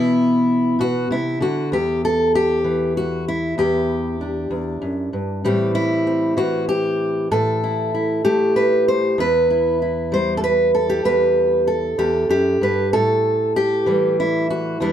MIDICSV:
0, 0, Header, 1, 2, 480
1, 0, Start_track
1, 0, Key_signature, 1, "minor"
1, 0, Tempo, 623053
1, 1320, Time_signature, 6, 3, 24, 8
1, 11497, End_track
2, 0, Start_track
2, 0, Title_t, "Steel-string acoustic guitar"
2, 0, Program_c, 0, 25
2, 0, Note_on_c, 0, 47, 78
2, 0, Note_on_c, 0, 52, 66
2, 0, Note_on_c, 0, 59, 46
2, 0, Note_on_c, 0, 64, 115
2, 599, Note_off_c, 0, 47, 0
2, 604, Note_off_c, 0, 64, 0
2, 608, Note_on_c, 0, 47, 64
2, 621, Note_on_c, 0, 66, 88
2, 644, Note_off_c, 0, 52, 0
2, 844, Note_off_c, 0, 47, 0
2, 851, Note_off_c, 0, 66, 0
2, 852, Note_on_c, 0, 48, 65
2, 863, Note_on_c, 0, 64, 82
2, 875, Note_off_c, 0, 59, 0
2, 1082, Note_on_c, 0, 50, 60
2, 1086, Note_off_c, 0, 48, 0
2, 1091, Note_off_c, 0, 64, 0
2, 1095, Note_on_c, 0, 66, 81
2, 1321, Note_off_c, 0, 50, 0
2, 1325, Note_on_c, 0, 40, 73
2, 1327, Note_off_c, 0, 66, 0
2, 1335, Note_on_c, 0, 67, 80
2, 1567, Note_off_c, 0, 67, 0
2, 1578, Note_on_c, 0, 69, 98
2, 1808, Note_off_c, 0, 69, 0
2, 1813, Note_on_c, 0, 67, 84
2, 2036, Note_on_c, 0, 52, 54
2, 2285, Note_off_c, 0, 67, 0
2, 2289, Note_on_c, 0, 66, 84
2, 2523, Note_off_c, 0, 66, 0
2, 2530, Note_on_c, 0, 64, 78
2, 2747, Note_off_c, 0, 40, 0
2, 2756, Note_on_c, 0, 40, 76
2, 2760, Note_off_c, 0, 64, 0
2, 2763, Note_on_c, 0, 67, 81
2, 3243, Note_on_c, 0, 62, 41
2, 3266, Note_off_c, 0, 52, 0
2, 3462, Note_off_c, 0, 40, 0
2, 3471, Note_on_c, 0, 40, 60
2, 3708, Note_off_c, 0, 40, 0
2, 3711, Note_on_c, 0, 42, 65
2, 3950, Note_off_c, 0, 42, 0
2, 3954, Note_on_c, 0, 43, 55
2, 4171, Note_off_c, 0, 62, 0
2, 4193, Note_off_c, 0, 67, 0
2, 4195, Note_off_c, 0, 43, 0
2, 4195, Note_on_c, 0, 45, 78
2, 4198, Note_on_c, 0, 52, 47
2, 4203, Note_on_c, 0, 55, 50
2, 4203, Note_on_c, 0, 67, 86
2, 4210, Note_on_c, 0, 60, 53
2, 4426, Note_off_c, 0, 67, 0
2, 4429, Note_on_c, 0, 64, 84
2, 4672, Note_off_c, 0, 60, 0
2, 4676, Note_on_c, 0, 60, 43
2, 4902, Note_off_c, 0, 52, 0
2, 4905, Note_on_c, 0, 52, 66
2, 4909, Note_off_c, 0, 64, 0
2, 4912, Note_on_c, 0, 66, 83
2, 5148, Note_off_c, 0, 66, 0
2, 5152, Note_on_c, 0, 67, 96
2, 5607, Note_off_c, 0, 60, 0
2, 5626, Note_off_c, 0, 45, 0
2, 5633, Note_off_c, 0, 67, 0
2, 5635, Note_on_c, 0, 45, 74
2, 5636, Note_on_c, 0, 69, 92
2, 5884, Note_on_c, 0, 64, 48
2, 6118, Note_off_c, 0, 64, 0
2, 6121, Note_on_c, 0, 64, 42
2, 6350, Note_off_c, 0, 64, 0
2, 6353, Note_on_c, 0, 67, 92
2, 6356, Note_off_c, 0, 52, 0
2, 6359, Note_on_c, 0, 57, 63
2, 6592, Note_off_c, 0, 69, 0
2, 6595, Note_on_c, 0, 71, 90
2, 6836, Note_off_c, 0, 71, 0
2, 6844, Note_on_c, 0, 72, 90
2, 7049, Note_off_c, 0, 57, 0
2, 7073, Note_on_c, 0, 40, 77
2, 7075, Note_off_c, 0, 67, 0
2, 7076, Note_off_c, 0, 45, 0
2, 7080, Note_off_c, 0, 55, 0
2, 7080, Note_off_c, 0, 72, 0
2, 7090, Note_on_c, 0, 71, 94
2, 7322, Note_on_c, 0, 64, 48
2, 7562, Note_off_c, 0, 64, 0
2, 7565, Note_on_c, 0, 64, 41
2, 7795, Note_on_c, 0, 55, 62
2, 7804, Note_off_c, 0, 71, 0
2, 7809, Note_on_c, 0, 72, 85
2, 7989, Note_off_c, 0, 72, 0
2, 7992, Note_on_c, 0, 69, 73
2, 8037, Note_off_c, 0, 69, 0
2, 8040, Note_on_c, 0, 71, 97
2, 8276, Note_off_c, 0, 71, 0
2, 8279, Note_on_c, 0, 69, 81
2, 8391, Note_off_c, 0, 64, 0
2, 8394, Note_on_c, 0, 67, 86
2, 8503, Note_off_c, 0, 40, 0
2, 8512, Note_on_c, 0, 40, 66
2, 8513, Note_off_c, 0, 69, 0
2, 8516, Note_on_c, 0, 71, 100
2, 8991, Note_off_c, 0, 71, 0
2, 8994, Note_on_c, 0, 69, 81
2, 8996, Note_off_c, 0, 67, 0
2, 9017, Note_off_c, 0, 55, 0
2, 9224, Note_off_c, 0, 40, 0
2, 9233, Note_on_c, 0, 40, 69
2, 9235, Note_on_c, 0, 67, 87
2, 9468, Note_off_c, 0, 40, 0
2, 9471, Note_off_c, 0, 67, 0
2, 9471, Note_on_c, 0, 42, 61
2, 9480, Note_on_c, 0, 67, 90
2, 9714, Note_off_c, 0, 42, 0
2, 9717, Note_off_c, 0, 69, 0
2, 9718, Note_on_c, 0, 43, 56
2, 9730, Note_on_c, 0, 71, 87
2, 9959, Note_off_c, 0, 43, 0
2, 9959, Note_off_c, 0, 71, 0
2, 9960, Note_off_c, 0, 67, 0
2, 9962, Note_on_c, 0, 69, 96
2, 9966, Note_on_c, 0, 45, 76
2, 10442, Note_off_c, 0, 69, 0
2, 10449, Note_on_c, 0, 67, 89
2, 10680, Note_on_c, 0, 52, 63
2, 10688, Note_on_c, 0, 55, 47
2, 10926, Note_off_c, 0, 67, 0
2, 10938, Note_on_c, 0, 64, 78
2, 11170, Note_off_c, 0, 64, 0
2, 11174, Note_on_c, 0, 66, 79
2, 11404, Note_on_c, 0, 40, 71
2, 11405, Note_off_c, 0, 45, 0
2, 11406, Note_off_c, 0, 52, 0
2, 11409, Note_off_c, 0, 66, 0
2, 11409, Note_on_c, 0, 52, 51
2, 11410, Note_off_c, 0, 55, 0
2, 11413, Note_on_c, 0, 55, 51
2, 11416, Note_on_c, 0, 64, 76
2, 11419, Note_on_c, 0, 62, 52
2, 11497, Note_off_c, 0, 40, 0
2, 11497, Note_off_c, 0, 52, 0
2, 11497, Note_off_c, 0, 55, 0
2, 11497, Note_off_c, 0, 62, 0
2, 11497, Note_off_c, 0, 64, 0
2, 11497, End_track
0, 0, End_of_file